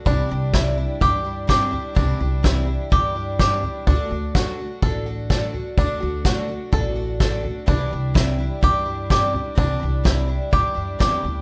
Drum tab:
SD |--o---o-|--o---o-|--o---o-|--o---o-|
FT |o---o--o|oo--o--o|o---o--o|o---o--o|
BD |o-o-o-o-|o-o-o-o-|o-o-o-o-|o-o-o-o-|

SD |--o---o-|--o---o-|
FT |o---o--o|oo--o--o|
BD |o-o-o-o-|o-o-o-o-|